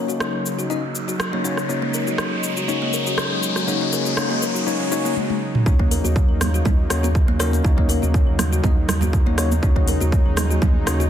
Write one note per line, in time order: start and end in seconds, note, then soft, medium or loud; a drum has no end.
0.00 5.62 C#3 medium
0.00 5.62 F#3 medium
0.00 0.67 A#3 medium
0.00 1.65 A#3 medium
0.00 0.67 C#4 medium
0.00 0.67 D#4 medium
0.00 5.62 D#4 medium
0.00 0.67 F#4 medium
0.00 0.67 C#5 medium
0.00 riser medium
0.08 0.20 F#4 medium
0.08 shaker medium
0.20 cross-stick loud
0.20 shaker soft
0.46 shaker loud
0.59 0.69 F#4 medium
0.59 shaker soft
0.70 0.82 A#3 medium
0.70 0.82 C#4 medium
0.70 0.82 D#4 medium
0.70 0.82 F#4 medium
0.70 0.82 D#5 medium
0.70 shaker soft
0.95 shaker medium
1.08 1.19 F#4 medium
1.08 shaker medium
1.20 cross-stick loud
1.20 shaker soft
1.33 1.42 A#3 medium
1.33 1.44 A#3 medium
1.33 1.42 C#4 medium
1.33 1.42 D#4 medium
1.33 1.42 F#4 medium
1.33 1.42 C#5 medium
1.44 1.56 A#3 medium
1.44 1.56 C#4 medium
1.44 1.56 D#4 medium
1.44 1.56 F#4 medium
1.44 1.56 C#5 loud
1.44 1.56 C#5 medium
1.44 shaker medium
1.57 cross-stick medium
1.57 shaker medium
1.69 5.62 G#3 medium
1.69 2.67 A#3 medium
1.69 2.67 C#4 medium
1.69 1.81 D#4 medium
1.69 2.67 D#4 medium
1.69 2.67 F#4 medium
1.69 2.67 C#5 medium
1.69 shaker soft
1.82 1.93 A#3 medium
1.94 2.06 A#4 medium
1.94 shaker loud
2.07 2.18 F#4 medium
2.07 shaker medium
2.18 cross-stick loud
2.18 shaker soft
2.44 shaker loud
2.57 2.67 F#4 medium
2.57 shaker medium
2.68 3.66 A#3 medium
2.68 3.66 C#4 medium
2.68 3.66 D#4 medium
2.68 2.81 D#4 medium
2.68 3.66 F#4 medium
2.68 3.66 C#5 medium
2.68 shaker soft
2.82 2.93 A#3 medium
2.93 3.05 A#4 medium
2.93 shaker loud
3.07 3.18 F#4 medium
3.07 shaker medium
3.18 cross-stick loud
3.18 shaker soft
3.43 shaker loud
3.56 3.66 F#4 medium
3.56 cross-stick medium
3.56 shaker medium
3.67 4.15 A#3 medium
3.67 4.15 C#4 medium
3.67 4.15 D#4 medium
3.67 3.80 D#4 medium
3.67 4.15 F#4 medium
3.67 4.15 C#5 medium
3.67 shaker soft
3.81 3.92 A#3 medium
3.93 4.05 A#4 medium
3.93 shaker medium
4.05 4.15 F#4 medium
4.05 shaker medium
4.17 4.65 A#3 medium
4.17 4.65 C#4 medium
4.17 4.29 D#4 medium
4.17 4.65 D#4 medium
4.17 4.65 F#4 medium
4.17 4.65 C#5 medium
4.17 cross-stick loud
4.17 shaker soft
4.30 4.41 A#3 medium
4.42 4.54 A#4 medium
4.42 shaker loud
4.55 4.65 F#4 medium
4.55 shaker medium
4.67 4.90 A#3 medium
4.67 4.90 C#4 medium
4.67 4.79 D#4 medium
4.67 4.90 D#4 medium
4.67 4.90 F#4 medium
4.67 4.90 C#5 medium
4.67 shaker soft
4.80 4.90 A#3 medium
4.91 5.15 A#3 medium
4.91 5.15 C#4 medium
4.91 5.15 D#4 medium
4.91 5.04 D#4 medium
4.91 5.15 F#4 medium
4.91 5.15 C#5 medium
4.91 shaker loud
5.05 5.15 A#3 medium
5.05 shaker medium
5.17 high tom medium
5.30 high tom medium
5.55 mid tom medium
5.66 6.00 D#2 loud
5.66 11.10 C#3 medium
5.66 11.10 F#3 medium
5.66 9.59 A#3 medium
5.66 6.87 A#3 medium
5.66 6.87 C#4 medium
5.66 11.10 D#4 medium
5.66 6.88 D#4 medium
5.66 5.78 D#4 medium
5.66 6.88 F#4 medium
5.66 6.88 C#5 medium
5.66 kick loud
5.66 shaker soft
5.79 5.90 A#3 medium
5.79 kick medium
5.91 6.03 A#4 medium
5.91 open hi-hat medium
5.91 muted conga medium
5.91 shaker medium
6.04 6.24 D#2 loud
6.04 6.15 F#4 medium
6.04 high conga medium
6.04 shaker medium
6.16 kick loud
6.16 muted conga soft
6.16 shaker soft
6.29 6.62 D#2 medium
6.41 cross-stick medium
6.41 open hi-hat medium
6.41 muted conga medium
6.41 high conga medium
6.41 low conga medium
6.41 shaker loud
6.54 6.64 F#4 medium
6.54 shaker medium
6.65 6.86 D#2 loud
6.65 6.77 D#4 medium
6.65 kick loud
6.65 muted conga soft
6.65 high conga medium
6.65 low conga loud
6.65 shaker soft
6.90 7.24 D#2 medium
6.90 7.08 A#3 medium
6.90 7.08 C#4 medium
6.90 7.08 D#4 medium
6.90 7.08 F#4 medium
6.90 7.08 C#5 loud
6.90 cross-stick loud
6.90 open hi-hat loud
6.90 shaker medium
7.03 7.14 F#4 medium
7.03 muted conga medium
7.03 high conga medium
7.03 shaker medium
7.15 kick loud
7.15 shaker soft
7.28 7.61 D#2 loud
7.28 7.39 A#3 medium
7.28 muted conga soft
7.39 7.62 A#3 loud
7.39 7.62 C#4 medium
7.39 7.62 D#4 medium
7.39 7.62 F#4 medium
7.39 7.62 A#4 loud
7.39 7.51 C#5 medium
7.39 cross-stick medium
7.39 open hi-hat medium
7.39 shaker medium
7.53 muted conga medium
7.53 shaker medium
7.64 7.98 D#2 loud
7.64 8.61 A#3 medium
7.64 8.61 C#4 medium
7.64 8.61 D#4 medium
7.64 7.76 D#4 medium
7.64 8.61 F#4 medium
7.64 8.61 C#5 loud
7.64 kick loud
7.64 shaker soft
7.78 7.89 A#3 medium
7.78 kick medium
7.89 8.01 A#4 medium
7.89 open hi-hat medium
7.89 muted conga medium
7.89 shaker medium
8.02 8.22 D#2 loud
8.02 8.14 F#4 medium
8.02 high conga medium
8.02 shaker medium
8.14 kick loud
8.14 muted conga soft
8.14 shaker soft
8.28 8.60 D#2 medium
8.39 cross-stick medium
8.39 open hi-hat medium
8.39 muted conga medium
8.39 high conga medium
8.39 low conga medium
8.39 shaker medium
8.53 8.63 F#4 medium
8.53 shaker medium
8.63 8.84 D#2 loud
8.63 8.75 A#3 medium
8.63 8.75 C#4 medium
8.63 8.75 D#4 medium
8.63 8.76 D#4 medium
8.63 8.75 F#4 medium
8.63 8.75 D#5 medium
8.63 kick loud
8.63 muted conga soft
8.63 high conga medium
8.63 low conga loud
8.63 shaker soft
8.88 9.22 D#2 medium
8.88 cross-stick loud
8.88 open hi-hat medium
8.88 low conga loud
8.88 shaker loud
9.01 9.13 F#4 medium
9.01 muted conga soft
9.01 high conga medium
9.01 low conga loud
9.01 shaker medium
9.13 kick loud
9.13 shaker soft
9.26 9.59 D#2 loud
9.26 9.35 A#3 medium
9.26 9.37 A#3 medium
9.26 9.35 C#4 medium
9.26 9.35 D#4 medium
9.26 9.35 F#4 medium
9.26 9.35 C#5 medium
9.26 muted conga soft
9.38 9.50 A#3 medium
9.38 9.50 C#4 medium
9.38 9.50 D#4 medium
9.38 9.50 F#4 medium
9.38 9.50 C#5 loud
9.38 9.50 C#5 medium
9.38 cross-stick medium
9.38 open hi-hat medium
9.38 shaker medium
9.52 muted conga medium
9.52 high conga medium
9.52 shaker medium
9.62 9.97 D#2 loud
9.62 11.10 G#3 medium
9.62 10.84 A#3 medium
9.62 10.84 C#4 medium
9.62 10.84 D#4 medium
9.62 9.75 D#4 medium
9.62 10.84 F#4 medium
9.62 10.84 C#5 medium
9.62 kick loud
9.62 shaker soft
9.76 9.87 A#3 medium
9.76 kick medium
9.88 10.00 A#4 medium
9.88 open hi-hat medium
9.88 muted conga medium
9.88 shaker medium
10.01 10.20 D#2 loud
10.01 10.12 F#4 medium
10.01 high conga medium
10.01 shaker medium
10.12 kick loud
10.12 muted conga soft
10.12 shaker soft
10.26 10.58 D#2 medium
10.36 cross-stick medium
10.36 open hi-hat medium
10.36 muted conga soft
10.36 high conga loud
10.36 low conga medium
10.36 shaker loud
10.50 10.61 F#4 medium
10.50 shaker medium
10.62 10.82 D#2 loud
10.62 10.74 D#4 medium
10.62 kick loud
10.62 muted conga soft
10.62 high conga medium
10.62 low conga loud
10.62 shaker soft
10.86 11.10 D#2 medium
10.86 11.05 A#3 loud
10.86 11.05 C#4 medium
10.86 11.05 D#4 medium
10.86 11.05 F#4 medium
10.86 11.05 C#5 loud
10.86 cross-stick loud
10.86 open hi-hat medium
10.86 shaker loud
11.00 11.10 F#4 medium
11.00 muted conga medium
11.00 high conga medium
11.00 shaker medium